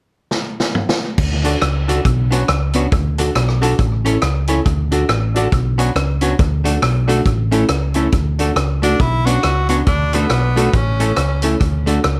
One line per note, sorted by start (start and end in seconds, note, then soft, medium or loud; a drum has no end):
0.31 snare medium
0.60 snare medium
0.75 mid tom medium
0.89 snare loud
1.18 1.55 D2 medium
1.18 kick loud
1.18 crash medium
1.43 1.55 D4 medium
1.43 1.55 F#4 medium
1.43 1.56 F#4 medium
1.43 1.55 A4 loud
1.43 1.56 A4 medium
1.43 1.56 D5 medium
1.43 closed hi-hat medium
1.62 1.99 C#2 loud
1.62 muted hollow-body jazz guitar stroke soft
1.62 cross-stick loud
1.62 closed hi-hat medium
1.88 1.99 D4 medium
1.88 1.99 F#4 medium
1.88 1.99 A4 medium
1.88 1.99 A4 loud
1.88 2.00 D5 loud
1.88 closed hi-hat medium
2.05 2.42 B1 loud
2.05 kick loud
2.05 closed hi-hat medium
2.30 2.42 B3 medium
2.30 2.42 C#4 loud
2.30 2.42 D4 medium
2.30 2.43 D4 medium
2.30 2.43 F#4 medium
2.30 2.43 B4 loud
2.30 2.43 C#5 medium
2.30 closed hi-hat medium
2.48 2.85 C#2 medium
2.48 muted hollow-body jazz guitar stroke soft
2.48 cross-stick loud
2.48 closed hi-hat medium
2.73 2.86 B3 medium
2.73 2.86 C#4 medium
2.73 2.86 D4 medium
2.73 2.86 F#4 medium
2.73 2.86 B4 loud
2.73 2.86 C#5 medium
2.73 closed hi-hat medium
2.92 3.29 D2 medium
2.92 kick loud
2.92 closed hi-hat medium
3.18 3.29 D4 medium
3.18 3.29 D4 loud
3.18 3.30 F#4 medium
3.18 3.30 A4 medium
3.18 3.30 A4 loud
3.18 3.30 D5 medium
3.18 closed hi-hat medium
3.35 3.72 B1 medium
3.35 muted hollow-body jazz guitar stroke soft
3.35 cross-stick loud
3.35 closed hi-hat medium
3.48 cross-stick medium
3.62 3.73 D4 medium
3.62 3.73 F#4 loud
3.62 3.73 F#4 medium
3.62 3.73 A4 loud
3.62 3.73 D5 loud
3.62 closed hi-hat medium
3.79 4.16 A1 loud
3.79 kick loud
3.79 closed hi-hat medium
4.05 4.16 C#4 medium
4.05 4.16 E4 medium
4.05 4.16 A4 medium
4.05 4.17 A4 loud
4.05 4.17 C#5 medium
4.05 closed hi-hat medium
4.22 4.59 C#2 medium
4.22 muted hollow-body jazz guitar stroke medium
4.22 cross-stick loud
4.22 closed hi-hat medium
4.47 4.60 C#4 medium
4.47 4.59 C#4 medium
4.47 4.60 E4 medium
4.47 4.60 A4 medium
4.47 4.60 C#5 medium
4.47 closed hi-hat medium
4.66 5.03 D2 medium
4.66 kick loud
4.66 closed hi-hat medium
4.91 5.03 D4 medium
4.91 5.03 F#4 medium
4.91 5.03 A4 loud
4.91 5.03 A4 medium
4.91 5.04 D5 medium
4.91 closed hi-hat medium
5.09 5.46 A1 medium
5.09 muted hollow-body jazz guitar stroke soft
5.09 cross-stick loud
5.09 closed hi-hat medium
5.34 5.46 D4 loud
5.34 5.47 D4 medium
5.34 5.46 F#4 medium
5.34 5.47 F#4 loud
5.34 5.47 A4 loud
5.34 5.47 D5 loud
5.34 closed hi-hat medium
5.52 5.89 B1 loud
5.52 kick loud
5.52 closed hi-hat medium
5.78 5.90 B3 medium
5.78 5.90 C#4 loud
5.78 5.90 D4 medium
5.78 5.90 F#4 loud
5.78 5.90 B4 loud
5.78 5.90 C#5 medium
5.78 closed hi-hat medium
5.95 6.33 C#2 medium
5.95 muted hollow-body jazz guitar stroke soft
5.95 cross-stick loud
5.95 closed hi-hat medium
6.21 6.33 B3 medium
6.21 6.33 C#4 medium
6.21 6.33 D4 medium
6.21 6.34 F#4 medium
6.21 6.33 B4 medium
6.21 6.34 C#5 loud
6.21 closed hi-hat medium
6.39 6.76 D2 loud
6.39 kick loud
6.39 closed hi-hat medium
6.64 6.76 A3 medium
6.64 6.76 D4 medium
6.64 6.76 F#4 medium
6.64 6.77 F#4 medium
6.64 6.77 A4 medium
6.64 6.77 A4 loud
6.64 closed hi-hat medium
6.82 7.19 B1 loud
6.82 muted hollow-body jazz guitar stroke soft
6.82 cross-stick loud
6.82 closed hi-hat medium
7.07 7.20 A3 medium
7.07 7.19 D4 medium
7.07 7.20 D4 loud
7.07 7.20 F#4 medium
7.07 7.20 F#4 loud
7.07 7.20 A4 loud
7.07 closed hi-hat medium
7.26 7.63 A1 medium
7.26 kick loud
7.26 closed hi-hat medium
7.51 7.63 A3 medium
7.51 7.63 C#4 medium
7.51 7.63 E4 medium
7.51 7.64 E4 medium
7.51 7.63 A4 loud
7.51 7.64 A4 medium
7.51 closed hi-hat medium
7.69 8.06 C#2 medium
7.69 muted hollow-body jazz guitar stroke soft
7.69 cross-stick loud
7.69 closed hi-hat medium
7.94 8.07 A3 medium
7.94 8.06 C#4 medium
7.94 8.07 C#4 medium
7.94 8.07 E4 medium
7.94 8.07 A4 loud
7.94 8.07 A4 medium
7.94 closed hi-hat medium
8.12 8.50 D2 medium
8.12 kick loud
8.12 closed hi-hat medium
8.39 8.51 A3 medium
8.39 8.50 D4 medium
8.39 8.51 D4 medium
8.39 8.50 F#4 medium
8.39 8.51 F#4 medium
8.39 8.51 A4 loud
8.39 8.51 A4 medium
8.39 closed hi-hat medium
8.56 8.93 C#2 medium
8.56 muted hollow-body jazz guitar stroke soft
8.56 cross-stick loud
8.56 closed hi-hat medium
8.82 8.94 A3 medium
8.82 8.94 D4 medium
8.82 9.02 D4 loud
8.82 8.94 F#4 medium
8.82 8.94 A4 medium
8.82 8.94 A4 loud
8.82 closed hi-hat medium
9.00 9.37 B1 loud
9.00 9.27 E4 loud
9.00 kick loud
9.00 closed hi-hat medium
9.25 9.37 B3 medium
9.25 9.37 C#4 medium
9.25 9.37 D4 medium
9.25 9.38 D4 loud
9.25 9.69 F#4 loud
9.25 9.38 F#4 medium
9.25 9.37 B4 loud
9.25 9.38 C#5 medium
9.25 closed hi-hat medium
9.43 9.81 C#2 loud
9.43 muted hollow-body jazz guitar stroke soft
9.43 cross-stick loud
9.43 closed hi-hat medium
9.69 9.81 B3 medium
9.69 9.80 C#4 medium
9.69 9.81 D4 medium
9.69 9.77 F#4 medium
9.69 9.81 F#4 medium
9.69 9.81 B4 medium
9.69 9.81 C#5 medium
9.69 closed hi-hat medium
9.86 10.24 D2 medium
9.86 10.16 D4 medium
9.86 kick loud
9.86 closed hi-hat medium
10.13 10.25 A3 medium
10.13 10.77 B3 medium
10.13 10.24 D4 loud
10.13 10.25 D4 medium
10.13 10.25 F#4 medium
10.13 10.25 A4 loud
10.13 10.25 A4 medium
10.13 closed hi-hat medium
10.30 10.67 B1 medium
10.30 muted hollow-body jazz guitar stroke soft
10.30 cross-stick loud
10.30 closed hi-hat medium
10.56 10.68 A3 loud
10.56 10.67 D4 medium
10.56 10.68 D4 loud
10.56 10.67 F#4 medium
10.56 10.68 F#4 medium
10.56 10.68 A4 loud
10.56 closed hi-hat medium
10.73 11.11 A1 loud
10.73 11.44 C#4 medium
10.73 kick loud
10.73 closed hi-hat medium
11.00 11.11 A3 medium
11.00 11.11 C#4 medium
11.00 11.11 E4 medium
11.00 11.12 A4 loud
11.00 closed hi-hat medium
11.17 11.54 C#2 medium
11.17 muted hollow-body jazz guitar stroke soft
11.17 cross-stick loud
11.17 closed hi-hat medium
11.42 11.54 A3 medium
11.42 11.55 C#4 medium
11.42 11.55 E4 medium
11.42 11.55 A4 loud
11.42 11.55 A4 medium
11.42 closed hi-hat medium
11.60 11.98 D2 medium
11.60 kick loud
11.60 closed hi-hat medium
11.86 11.98 A3 medium
11.86 11.98 D4 medium
11.86 11.98 D4 loud
11.86 11.98 F#4 medium
11.86 11.98 A4 medium
11.86 11.99 A4 loud
11.86 closed hi-hat medium
12.04 12.20 C#2 loud
12.04 muted hollow-body jazz guitar stroke soft
12.04 cross-stick loud
12.04 closed hi-hat medium